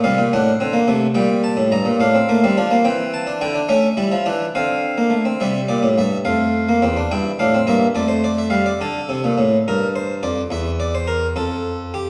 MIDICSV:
0, 0, Header, 1, 2, 480
1, 0, Start_track
1, 0, Tempo, 566572
1, 263, Time_signature, 6, 3, 24, 8
1, 10249, End_track
2, 0, Start_track
2, 0, Title_t, "Harpsichord"
2, 0, Program_c, 0, 6
2, 32, Note_on_c, 0, 77, 61
2, 34, Note_on_c, 0, 55, 64
2, 35, Note_on_c, 0, 48, 60
2, 145, Note_off_c, 0, 48, 0
2, 155, Note_on_c, 0, 46, 64
2, 178, Note_off_c, 0, 77, 0
2, 179, Note_off_c, 0, 55, 0
2, 265, Note_off_c, 0, 46, 0
2, 282, Note_on_c, 0, 78, 63
2, 283, Note_on_c, 0, 45, 59
2, 283, Note_on_c, 0, 62, 79
2, 424, Note_off_c, 0, 45, 0
2, 425, Note_off_c, 0, 62, 0
2, 511, Note_on_c, 0, 60, 64
2, 517, Note_on_c, 0, 50, 56
2, 620, Note_on_c, 0, 58, 67
2, 622, Note_off_c, 0, 60, 0
2, 660, Note_off_c, 0, 50, 0
2, 736, Note_off_c, 0, 58, 0
2, 745, Note_on_c, 0, 48, 72
2, 746, Note_on_c, 0, 57, 74
2, 890, Note_off_c, 0, 48, 0
2, 891, Note_off_c, 0, 57, 0
2, 966, Note_off_c, 0, 78, 0
2, 971, Note_on_c, 0, 55, 68
2, 973, Note_on_c, 0, 46, 62
2, 976, Note_on_c, 0, 79, 62
2, 1123, Note_off_c, 0, 79, 0
2, 1218, Note_on_c, 0, 81, 64
2, 1321, Note_off_c, 0, 46, 0
2, 1330, Note_on_c, 0, 45, 62
2, 1364, Note_off_c, 0, 81, 0
2, 1447, Note_off_c, 0, 45, 0
2, 1455, Note_on_c, 0, 82, 65
2, 1461, Note_on_c, 0, 43, 69
2, 1570, Note_on_c, 0, 46, 69
2, 1572, Note_off_c, 0, 43, 0
2, 1602, Note_off_c, 0, 82, 0
2, 1666, Note_off_c, 0, 55, 0
2, 1686, Note_off_c, 0, 46, 0
2, 1693, Note_on_c, 0, 45, 58
2, 1698, Note_on_c, 0, 77, 71
2, 1701, Note_on_c, 0, 62, 70
2, 1812, Note_off_c, 0, 62, 0
2, 1818, Note_on_c, 0, 60, 64
2, 1840, Note_off_c, 0, 45, 0
2, 1930, Note_off_c, 0, 60, 0
2, 1939, Note_on_c, 0, 57, 80
2, 1941, Note_on_c, 0, 58, 64
2, 2050, Note_off_c, 0, 57, 0
2, 2051, Note_off_c, 0, 58, 0
2, 2066, Note_on_c, 0, 60, 67
2, 2068, Note_on_c, 0, 55, 76
2, 2174, Note_off_c, 0, 60, 0
2, 2175, Note_off_c, 0, 55, 0
2, 2180, Note_on_c, 0, 62, 74
2, 2184, Note_on_c, 0, 53, 84
2, 2291, Note_off_c, 0, 62, 0
2, 2296, Note_on_c, 0, 58, 62
2, 2328, Note_off_c, 0, 53, 0
2, 2391, Note_off_c, 0, 77, 0
2, 2409, Note_off_c, 0, 58, 0
2, 2410, Note_on_c, 0, 60, 65
2, 2414, Note_on_c, 0, 79, 67
2, 2419, Note_on_c, 0, 52, 68
2, 2561, Note_off_c, 0, 79, 0
2, 2658, Note_on_c, 0, 81, 67
2, 2758, Note_off_c, 0, 60, 0
2, 2769, Note_on_c, 0, 62, 62
2, 2803, Note_off_c, 0, 81, 0
2, 2879, Note_off_c, 0, 52, 0
2, 2885, Note_off_c, 0, 62, 0
2, 2891, Note_on_c, 0, 64, 67
2, 2893, Note_on_c, 0, 50, 81
2, 2894, Note_on_c, 0, 79, 69
2, 3005, Note_on_c, 0, 62, 73
2, 3006, Note_off_c, 0, 64, 0
2, 3040, Note_off_c, 0, 50, 0
2, 3041, Note_off_c, 0, 79, 0
2, 3123, Note_off_c, 0, 62, 0
2, 3124, Note_on_c, 0, 61, 71
2, 3125, Note_on_c, 0, 57, 80
2, 3126, Note_on_c, 0, 76, 66
2, 3274, Note_off_c, 0, 61, 0
2, 3275, Note_off_c, 0, 57, 0
2, 3365, Note_on_c, 0, 55, 80
2, 3366, Note_on_c, 0, 64, 62
2, 3484, Note_off_c, 0, 55, 0
2, 3488, Note_on_c, 0, 53, 77
2, 3516, Note_off_c, 0, 64, 0
2, 3606, Note_off_c, 0, 53, 0
2, 3606, Note_on_c, 0, 62, 74
2, 3611, Note_on_c, 0, 52, 82
2, 3757, Note_off_c, 0, 62, 0
2, 3760, Note_off_c, 0, 52, 0
2, 3829, Note_off_c, 0, 76, 0
2, 3856, Note_on_c, 0, 77, 59
2, 3857, Note_on_c, 0, 60, 58
2, 3858, Note_on_c, 0, 50, 69
2, 4207, Note_off_c, 0, 60, 0
2, 4216, Note_on_c, 0, 58, 53
2, 4321, Note_on_c, 0, 57, 58
2, 4333, Note_off_c, 0, 58, 0
2, 4447, Note_off_c, 0, 57, 0
2, 4450, Note_on_c, 0, 60, 60
2, 4561, Note_off_c, 0, 77, 0
2, 4562, Note_off_c, 0, 50, 0
2, 4573, Note_off_c, 0, 60, 0
2, 4577, Note_on_c, 0, 55, 54
2, 4580, Note_on_c, 0, 76, 52
2, 4584, Note_on_c, 0, 48, 59
2, 4732, Note_off_c, 0, 76, 0
2, 4734, Note_off_c, 0, 48, 0
2, 4815, Note_on_c, 0, 74, 53
2, 4823, Note_on_c, 0, 46, 52
2, 4938, Note_on_c, 0, 45, 60
2, 4942, Note_off_c, 0, 46, 0
2, 4969, Note_off_c, 0, 74, 0
2, 5060, Note_off_c, 0, 45, 0
2, 5065, Note_on_c, 0, 43, 67
2, 5068, Note_on_c, 0, 76, 62
2, 5216, Note_off_c, 0, 43, 0
2, 5218, Note_off_c, 0, 76, 0
2, 5286, Note_off_c, 0, 55, 0
2, 5294, Note_on_c, 0, 77, 53
2, 5297, Note_on_c, 0, 41, 57
2, 5299, Note_on_c, 0, 57, 49
2, 5655, Note_off_c, 0, 57, 0
2, 5665, Note_on_c, 0, 58, 55
2, 5770, Note_off_c, 0, 41, 0
2, 5781, Note_on_c, 0, 40, 62
2, 5782, Note_on_c, 0, 60, 56
2, 5784, Note_off_c, 0, 58, 0
2, 5903, Note_off_c, 0, 60, 0
2, 5904, Note_on_c, 0, 62, 56
2, 5933, Note_off_c, 0, 40, 0
2, 6002, Note_off_c, 0, 77, 0
2, 6024, Note_off_c, 0, 62, 0
2, 6027, Note_on_c, 0, 64, 61
2, 6028, Note_on_c, 0, 79, 53
2, 6030, Note_on_c, 0, 43, 56
2, 6178, Note_off_c, 0, 64, 0
2, 6179, Note_off_c, 0, 79, 0
2, 6180, Note_off_c, 0, 43, 0
2, 6263, Note_on_c, 0, 77, 57
2, 6270, Note_on_c, 0, 45, 56
2, 6270, Note_on_c, 0, 62, 63
2, 6389, Note_off_c, 0, 62, 0
2, 6392, Note_on_c, 0, 60, 58
2, 6416, Note_off_c, 0, 77, 0
2, 6420, Note_off_c, 0, 45, 0
2, 6498, Note_on_c, 0, 43, 63
2, 6501, Note_on_c, 0, 76, 62
2, 6502, Note_on_c, 0, 58, 70
2, 6510, Note_off_c, 0, 60, 0
2, 6652, Note_off_c, 0, 43, 0
2, 6654, Note_off_c, 0, 76, 0
2, 6655, Note_off_c, 0, 58, 0
2, 6733, Note_on_c, 0, 41, 56
2, 6736, Note_on_c, 0, 57, 61
2, 6739, Note_on_c, 0, 74, 56
2, 6847, Note_on_c, 0, 72, 58
2, 6862, Note_off_c, 0, 74, 0
2, 6976, Note_off_c, 0, 72, 0
2, 6982, Note_on_c, 0, 74, 64
2, 7103, Note_off_c, 0, 74, 0
2, 7103, Note_on_c, 0, 76, 56
2, 7202, Note_on_c, 0, 77, 65
2, 7204, Note_on_c, 0, 55, 68
2, 7208, Note_off_c, 0, 57, 0
2, 7223, Note_off_c, 0, 76, 0
2, 7332, Note_off_c, 0, 77, 0
2, 7335, Note_on_c, 0, 74, 60
2, 7361, Note_off_c, 0, 55, 0
2, 7438, Note_off_c, 0, 41, 0
2, 7459, Note_off_c, 0, 74, 0
2, 7463, Note_on_c, 0, 50, 67
2, 7467, Note_on_c, 0, 69, 65
2, 7614, Note_off_c, 0, 50, 0
2, 7702, Note_on_c, 0, 48, 72
2, 7823, Note_off_c, 0, 48, 0
2, 7830, Note_on_c, 0, 46, 68
2, 7945, Note_on_c, 0, 45, 80
2, 7947, Note_off_c, 0, 46, 0
2, 8096, Note_off_c, 0, 45, 0
2, 8168, Note_off_c, 0, 69, 0
2, 8200, Note_on_c, 0, 70, 66
2, 8202, Note_on_c, 0, 43, 62
2, 8346, Note_off_c, 0, 70, 0
2, 8434, Note_on_c, 0, 72, 64
2, 8581, Note_off_c, 0, 72, 0
2, 8660, Note_off_c, 0, 43, 0
2, 8666, Note_on_c, 0, 74, 71
2, 8669, Note_on_c, 0, 41, 69
2, 8815, Note_off_c, 0, 74, 0
2, 8817, Note_off_c, 0, 41, 0
2, 8900, Note_on_c, 0, 40, 58
2, 8910, Note_on_c, 0, 76, 83
2, 9056, Note_off_c, 0, 76, 0
2, 9148, Note_on_c, 0, 74, 74
2, 9262, Note_off_c, 0, 74, 0
2, 9274, Note_on_c, 0, 72, 70
2, 9382, Note_on_c, 0, 70, 76
2, 9385, Note_off_c, 0, 72, 0
2, 9531, Note_off_c, 0, 70, 0
2, 9597, Note_off_c, 0, 40, 0
2, 9624, Note_on_c, 0, 41, 67
2, 9628, Note_on_c, 0, 69, 72
2, 10092, Note_off_c, 0, 69, 0
2, 10116, Note_on_c, 0, 67, 73
2, 10249, Note_off_c, 0, 41, 0
2, 10249, Note_off_c, 0, 67, 0
2, 10249, End_track
0, 0, End_of_file